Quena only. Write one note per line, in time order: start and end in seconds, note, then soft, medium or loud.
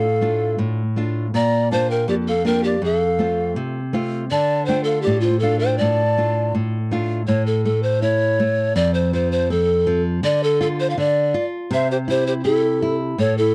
0.00 0.56 F5 medium
1.35 1.69 A#5 medium
1.71 1.88 A5 medium
1.90 2.07 G5 medium
2.09 2.15 D5 medium
2.29 2.45 F5 medium
2.47 2.64 G5 medium
2.66 2.82 D5 medium
2.85 3.54 F5 medium
4.32 4.66 A5 medium
4.68 4.85 G5 medium
4.87 5.03 F5 medium
5.04 5.22 D5 medium
5.23 5.41 C5 medium
5.42 5.59 F5 medium
5.61 5.82 G5 medium
5.81 6.55 A5 medium
11.73 11.89 C5 medium
11.91 11.97 G4 medium
12.10 12.26 G4 medium
12.27 12.33 G4 medium
12.47 12.97 E4 medium
13.20 13.36 A4 medium
13.39 13.55 E4 medium